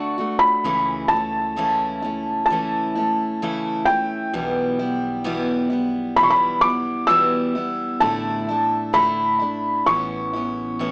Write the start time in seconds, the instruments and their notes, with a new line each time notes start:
Already playing: upright bass D2, steel-string acoustic guitar D3 A3 D4 F#4, felt piano C#6
0.18 steel-string acoustic guitar A3 D4 F#4
0.39 felt piano B5
0.64 upright bass C#2, steel-string acoustic guitar C#3 E3 A3 C#4 E4
1.08 steel-string acoustic guitar E4, felt piano A5
1.12 steel-string acoustic guitar A3 C#4
1.56 steel-string acoustic guitar C#3 E3 A3 C#4 E4
2.02 steel-string acoustic guitar A3 C#4 E4
2.46 felt piano A5
2.50 steel-string acoustic guitar E3 A3 C#4 E4
2.95 steel-string acoustic guitar A3 C#4 E4
3.42 steel-string acoustic guitar C#3 E3 A3 C#4 E4
3.85 steel-string acoustic guitar C#4 E4, felt piano G5
3.90 steel-string acoustic guitar A3
4.34 upright bass B1, steel-string acoustic guitar B2 E3 G3 B3 E4
4.79 steel-string acoustic guitar G3 B3 E4
5.24 steel-string acoustic guitar B2 E3 G3 B3 E4
5.70 steel-string acoustic guitar G3 B3 E4
6.16 steel-string acoustic guitar E3 G3 B3 E4, felt piano B5
6.23 felt piano C#6
6.30 felt piano B5
6.61 steel-string acoustic guitar G3 B3 E4, felt piano D6
7.07 steel-string acoustic guitar B2 E3 G3 B3, felt piano E6
7.11 steel-string acoustic guitar E4
7.55 steel-string acoustic guitar G3 B3 E4
8.00 upright bass A1, steel-string acoustic guitar A2 D3 A3 D4 E4, felt piano A5
8.49 steel-string acoustic guitar A3 D4 E4
8.93 steel-string acoustic guitar A2 D3 A3 D4 E4, felt piano B5
9.39 steel-string acoustic guitar A3 D4 E4
9.86 upright bass A1, steel-string acoustic guitar E3 B3 C#4 E4, felt piano C#6
10.33 steel-string acoustic guitar B3 C#4 E4
10.79 steel-string acoustic guitar A2 E3 B3 C#4 E4